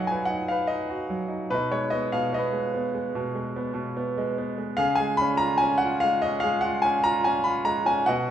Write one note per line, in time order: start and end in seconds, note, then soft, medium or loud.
0.00 1.49 B2 medium
0.00 1.10 F#3 medium
0.00 0.30 D#4 soft
0.00 0.86 F#4 soft
0.00 0.11 B4 soft
0.00 0.67 D#5 medium
0.00 0.48 F5 medium
0.00 0.25 F#5 medium
0.00 0.07 G#5 medium
0.00 1.53 A#5 medium
0.00 1.54 B5 medium
0.07 0.29 G#5 medium
0.11 0.50 B4 soft
0.25 0.48 F#5 medium
0.30 0.69 D#4 soft
0.48 1.49 B4 soft
0.48 0.68 F5 medium
0.67 1.27 D#4 soft
0.67 1.47 D#5 medium
0.89 1.50 F#4 soft
1.10 1.50 F#3 soft
1.28 1.50 D#4 soft
1.50 2.12 B2 medium
1.50 1.72 B4 medium
1.54 3.13 D#4 medium
1.71 2.51 G#3 soft
1.71 1.93 C#5 medium
1.90 2.32 B3 soft
1.90 2.13 D#5 medium
2.12 3.14 B2 medium
2.12 2.34 F5 medium
2.33 2.72 B3 medium
2.33 3.93 D#5 medium
2.38 3.95 B4 medium
2.53 2.93 G#3 soft
2.74 3.55 B3 medium
2.94 3.34 G#3 soft
3.15 3.72 B2 medium
3.35 4.16 G#3 soft
3.56 3.95 B3 soft
3.74 4.74 B2 medium
3.97 4.37 B3 medium
4.18 4.56 G#3 medium
4.38 4.77 B3 medium
4.58 4.78 G#3 medium
4.77 8.03 C#3 medium
4.77 6.38 G#4 medium
4.77 4.97 F5 medium
4.95 5.16 G#5 medium
5.00 6.02 G#3 soft
5.17 5.37 B5 loud
5.21 5.60 C#4 medium
5.37 5.82 F4 medium
5.37 5.57 A#5 medium
5.58 5.80 G#5 medium
5.62 6.23 C#4 medium
5.78 6.00 F#5 medium
5.83 6.63 F4 soft
6.00 6.43 G#3 medium
6.00 6.22 F5 medium
6.22 6.83 C#4 medium
6.22 6.41 D#5 medium
6.40 8.04 G#4 medium
6.40 6.62 F5 medium
6.44 7.64 G#3 medium
6.61 7.03 F4 soft
6.61 6.81 F#5 medium
6.82 7.25 C#4 medium
6.82 7.04 G#5 medium
7.04 7.44 F4 medium
7.04 7.25 A#5 loud
7.24 7.84 C#4 medium
7.24 7.45 G#5 medium
7.44 8.06 F4 medium
7.44 7.63 B5 medium
7.65 8.06 G#3 medium
7.65 7.87 A#5 medium
7.86 8.06 C#4 medium
7.86 8.08 G#5 medium
8.06 8.31 B2 medium
8.06 8.31 D#5 medium
8.06 8.31 F#5 medium